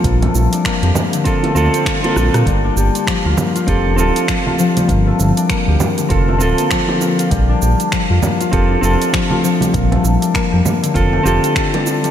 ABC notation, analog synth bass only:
X:1
M:4/4
L:1/16
Q:"Swing 16ths" 1/4=99
K:Bb
V:1 name="Analog synth bass" clef=bass
B,,, z B,,, z2 F,, z4 D,, z3 B,,, B,, | G,,, z G,,, z2 D,, z2 F,,,2 D,,, z4 z | G,,, z G,,, z2 D,, z2 F,,,2 D,,, z4 z | B,,, z B,,, z2 F,, z2 F,,, z F,,, z4 z |
B,,, z B,,, z2 F,, z2 F,,, z F,,, z4 z |]